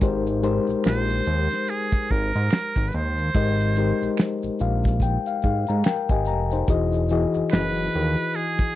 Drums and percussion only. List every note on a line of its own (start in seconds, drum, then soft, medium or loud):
0.01 kick loud
0.01 closed hi-hat medium
0.01 maracas medium
0.27 closed hi-hat medium
0.27 maracas soft
0.43 closed hi-hat medium
0.43 maracas soft
0.67 closed hi-hat soft
0.67 maracas soft
0.84 finger snap medium
0.84 snare loud
0.84 closed hi-hat medium
0.84 maracas medium
0.87 finger snap medium
1.09 snare soft
1.09 closed hi-hat soft
1.09 maracas soft
1.25 closed hi-hat medium
1.25 maracas soft
1.50 snare soft
1.50 closed hi-hat soft
1.50 maracas soft
1.67 closed hi-hat medium
1.67 maracas medium
1.92 kick medium
1.92 closed hi-hat soft
1.92 maracas soft
2.08 kick medium
2.08 closed hi-hat medium
2.33 closed hi-hat soft
2.33 maracas soft
2.50 finger snap medium
2.50 snare loud
2.50 closed hi-hat medium
2.50 maracas medium
2.53 finger snap medium
2.76 kick medium
2.76 closed hi-hat soft
2.76 maracas soft
2.92 closed hi-hat medium
2.92 maracas soft
3.18 closed hi-hat soft
3.18 maracas soft
3.34 kick loud
3.34 closed hi-hat medium
3.34 maracas medium
3.60 closed hi-hat medium
3.60 maracas soft
3.76 closed hi-hat medium
3.76 maracas soft
4.00 closed hi-hat soft
4.00 maracas soft
4.17 finger snap medium
4.17 snare loud
4.17 closed hi-hat medium
4.17 maracas medium
4.20 finger snap medium
4.43 closed hi-hat soft
4.43 maracas soft
4.59 closed hi-hat medium
4.59 maracas medium
4.84 kick medium
4.84 snare soft
4.84 closed hi-hat soft
4.84 maracas soft
5.00 kick medium
5.00 closed hi-hat medium
5.00 maracas medium
5.26 closed hi-hat soft
5.26 maracas soft
5.42 kick medium
5.42 closed hi-hat soft
5.67 closed hi-hat soft
5.67 maracas soft
5.84 finger snap medium
5.84 snare loud
5.84 closed hi-hat medium
5.84 maracas medium
5.87 finger snap medium
6.09 kick loud
6.09 closed hi-hat soft
6.09 maracas soft
6.25 closed hi-hat medium
6.25 maracas soft
6.51 closed hi-hat medium
6.51 maracas soft
6.67 kick loud
6.67 closed hi-hat medium
6.67 maracas medium
6.92 closed hi-hat medium
6.92 maracas soft
7.09 closed hi-hat medium
7.09 maracas soft
7.34 closed hi-hat soft
7.34 maracas soft
7.50 finger snap medium
7.50 snare loud
7.50 closed hi-hat medium
7.50 maracas medium
7.54 finger snap medium
7.75 closed hi-hat soft
7.75 maracas soft
7.92 closed hi-hat medium
7.92 maracas medium
8.16 closed hi-hat soft
8.16 maracas soft
8.33 closed hi-hat medium
8.33 maracas medium
8.59 kick medium
8.59 closed hi-hat soft
8.59 maracas soft